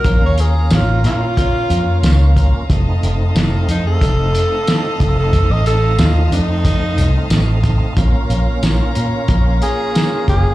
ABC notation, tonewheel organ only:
X:1
M:4/4
L:1/8
Q:1/4=91
K:Bbm
V:1 name="Tonewheel organ"
[B,DF]8 | [=A,CE]8- | [=A,CE]8 | [B,DF]8 |]